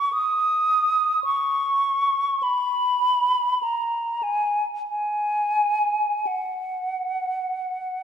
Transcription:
flute
Already playing: C#6
0.13 D#6
1.24 C#6
2.43 B5
3.63 A#5
4.23 G#5
4.89 G#5
6.27 F#5

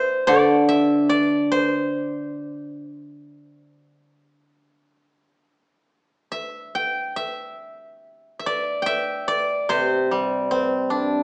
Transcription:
guzheng
Already playing: C5 D5 E5 G5
0.27 D3 D5
0.69 E5
1.09 D5
1.52 C5
6.32 E5
6.75 G5
7.16 E5
8.39 E5
8.46 D5
8.82 G5
8.86 E5
9.28 D5
9.69 C3 C5
10.11 G3
10.51 C4
10.90 D4

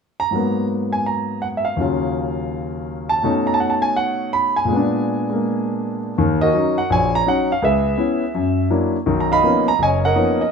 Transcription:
grand piano
0.20 A#5
0.31 G#2 F#3 A#3
0.36 B3
0.93 G#5
1.06 A#5
1.42 F#5
1.57 E5
1.65 F5
1.77 D#2 C#3 F#3
1.81 F4
3.09 A5
3.23 B2 A3 C#4 D#4
3.47 A#5
3.54 A5
3.60 F#5
3.70 A5
3.82 G#5
3.96 F#5
4.33 B5
4.56 G#5
4.65 A#2 G#3
4.72 B3 D4
5.30 G#3 A#3
6.18 D#2 D#3
6.41 F#4 A#4 D#5
6.54 F#3 C#4 D#4
6.78 F#5
6.90 A#1 C#5 G#5
7.15 A#5
7.27 F#3 C#4 D#4 F#5
7.52 F5
7.62 C#2 G#4 B4 E5
7.98 B3 C#4 E4
8.35 F#2
8.70 F#3 A#3 D4 E4
9.06 B1 D#3
9.20 A#5
9.32 D#5 F5 B5
9.43 F3 A#3 B3 C#4 D#4
9.68 A#5
9.79 F#1 D#5 G#5
9.83 C#5
10.05 A#4 D#5 F#5
10.15 F3 A#3 B3 C#4 D#4
10.41 D#5

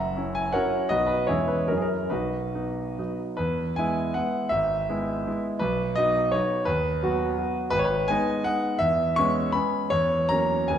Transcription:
grand piano
Already playing: F#1 E5 F#5 A#5
0.17 C#4 E4
0.35 G#5
0.53 F#3 C#4 E4 A#4 C#5 F#5
0.89 B1 F#3 B3 D#4 F#4 B4 D#5
1.07 B4
1.27 E2 G#3 C#4 E4 G#4 C#5
1.48 B4
1.68 F#2 F#3 C#4 E4 A#4
1.77 G#4
1.82 A#4
2.10 B1 D#4 F#4 B4
2.55 B3 D#4
2.99 F#3 B3 D#4
3.37 E2 B4
3.76 G#3 B3 E4 G#5
4.14 G#3 B3 E4 F#5
4.49 G#1 E5
4.89 G#3 B3 E4
5.27 G#3 B3 E4
5.59 B1 B4
5.96 F#3 B3 D#4 D#5
6.32 F#3 B3 D#4 C#5
6.65 D#2 B4
7.03 F#3 B3 F#4
7.38 F#3 B3 F#4
7.70 G#1 B4
7.79 C#5
7.84 B4
8.08 G#3 B3 D#4 G#5
8.44 G#3 B3 D#4 F#5
8.79 E2 E5
9.16 G#3 B3 C#4 C#6
9.52 G#3 B3 C#4 B5
9.90 E2 C#5
10.29 F#3 A#3 C#4 A#5
10.68 D#2 F#3 B3 D#4 G#5

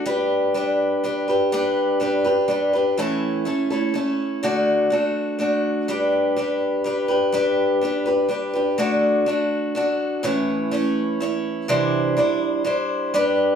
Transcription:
steel-string acoustic guitar
0.06 G3 D4 G4 B4
0.54 G3 D4 G4 B4
1.04 G3 D4 G4 B4
1.28 D4 G4 B4
1.52 G3 D4 G4 B4
2.00 G3 D4 G4 B4
2.24 D4 G4 B4
2.48 G3 D4 G4 B4
2.73 D4 G4 B4
2.97 A2 E3 A3 C#4 E4 A4
3.45 A3 C#4 E4 A4
3.70 A3 C#4 E4 A4
3.94 A3 C#4 E4 A4
4.43 D3 A3 D4 F#4 A4
4.90 A3 D4 F#4 A4
5.39 A3 D4 F#4 A4
5.88 G3 D4 G4 B4
6.36 G3 D4 G4 B4
6.84 G3 D4 G4 B4
7.08 D4 G4 B4
7.32 G3 D4 G4 B4
7.81 G3 D4 G4 B4
8.06 D4 G4 B4
8.29 G3 D4 G4 B4
8.54 D4 G4 B4
8.78 D3 A3 D4 F#4 A4
9.26 A3 D4 F#4 A4
9.75 A3 D4 F#4 A4
10.23 A2 E3 A3 C#4 E4 C#5
10.71 A3 C#4 E4 C#5
11.20 A3 C#4 E4 C#5
11.68 C3 E3 G3 D4 E4 C5
12.17 G3 D4 E4 C5
12.64 G3 D4 E4 C5
13.14 G3 D4 G4 B4

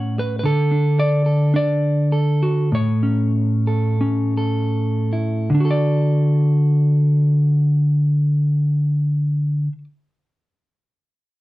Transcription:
clean electric guitar
Already playing: A2 C#4 C#5 F#5
0.19 B4
0.39 B4
0.43 D3 A4
0.71 D4
0.99 D5
1.26 A4
1.54 D4 D5
2.12 A4
2.43 F#4
2.72 A2 C#5
3.03 C#4
3.67 A4
4.01 C#4
4.37 A4
5.13 E4
5.50 D3
5.55 D4
5.60 F#4
5.65 A4
5.71 D5

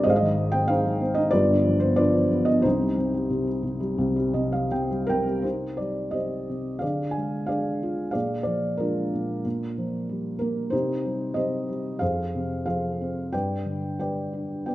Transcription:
felt piano
0.04 G#1 G#2 G#4 C5 D#5
0.10 F5
0.16 D#5
0.22 D#3
0.37 G#3
0.52 C4 G5
0.68 D#4 G#4 C5 F5
0.85 G#3
1.01 C4
1.15 D#4 D#5
1.31 G1 G2 F4 B4 D5
1.49 D3
1.65 F3
1.80 B3 C5
1.96 D4 F4 B4 D5
2.14 F3
2.31 B3
2.45 D4 D#5
2.62 C2 C3 D#4 G4 C5
2.81 G3
2.98 C3
3.14 G3
3.30 C3
3.47 G3
3.63 C3
3.80 G3
3.98 C2 C3
4.16 G3
4.34 C3 D#5
4.52 G3 F5
4.72 C3 G5
4.91 G3
5.07 C3 A#4 G5
5.27 G3
5.42 C3 D#4 G4 C5
5.77 G3 D5
6.11 C4 G4 C5 D#5
6.50 C3
6.79 G#4 D5 F5
6.83 D3
7.11 G#5
7.17 G#3
7.46 D4 G#4 D5 F5
7.83 F4
8.11 A#2 G#4 D5 F5
8.43 F3 D5
8.77 G#3 D4 F4 A#4
9.14 A#2
9.45 A#2
9.78 F3
10.09 G3
10.39 A#3 A#4
10.70 C3 D#4 G4 C5
11.06 G3
11.34 C3 G4 C5 D#5
11.69 G3
11.99 F2 G#4 C5 F5
12.35 C3
12.66 F3 G#4 C5 F5
13.01 C4
13.33 G2 B4 D5 G5
13.66 D3
13.99 G3 B4 D5 G5
14.33 D4
14.66 B3 B4 D5 G5

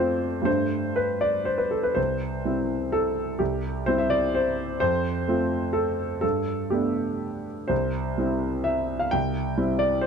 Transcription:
grand piano
Already playing: F2 A3 C4 F4 C5 D5
0.42 G2 G3 A3 D4 C5
0.96 B4
1.21 D5
1.45 C5
1.58 B4
1.71 A4
1.83 B4
1.95 C2 C5
2.45 G3 C4 E4
2.92 A4
3.39 C2 G4
3.86 G3 C4 E4 C5
3.98 E5
4.10 D5
4.35 C5
4.80 F2 C5
5.28 A3 C4 F4
5.73 A4
6.21 G2 A4
6.70 A3 B3 D4 G4
7.68 C2 C5
8.18 G3 C4 E4
8.64 E5
8.99 F5
9.11 C2 G5
9.57 G3 C4 E4
9.79 D5
10.01 C5

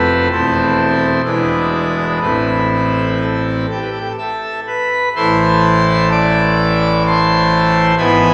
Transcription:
pipe organ
Already playing: F1 F2 A3 C4 A4 B4
0.32 E1 E2 A3 C4 E4 C5
1.24 E1 E2 G#3 D4 E4 B4
2.21 A1 A2 A3 C4 E4 B4
3.21 A4
3.71 G4 G5
3.82 B4
3.91 A4
4.00 G4
4.09 A4
4.18 A4 E5 A5
4.67 B4 B5
5.16 A1 A2 E3 A3 E4 C5 A5 C6
6.11 D5 D6
7.06 C5 A5 C6
7.97 G#1 G#2 E3 B3 E4 B4 G#5 B5

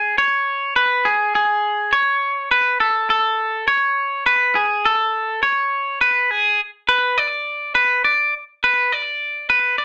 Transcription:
clean electric guitar
Already playing: G#4
0.18 C#5
0.76 B4
1.05 G#4
1.35 G#4
1.93 C#5
2.51 B4
2.80 A4
3.10 A4
3.68 C#5
4.26 B4
4.55 G#4
4.85 A4
5.43 C#5
6.01 B4
6.31 G#4
6.89 B4
7.18 D5
7.75 B4
8.04 D5
8.64 B4
8.92 D5
9.50 B4
9.78 D5

